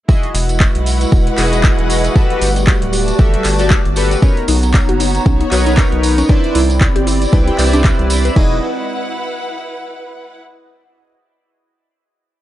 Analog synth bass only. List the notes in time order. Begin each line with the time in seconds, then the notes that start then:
0.35 E1
0.75 B1
1.12 E1
1.38 E1
1.78 E1
2.41 G1
2.82 D1
3.19 G1
3.45 G1
3.85 G1
4.48 B1
4.89 F#1
5.26 B1
5.52 B1
5.92 B1
6.55 C2
6.96 G1
7.33 C2
7.59 C2
7.99 C2
8.36 E1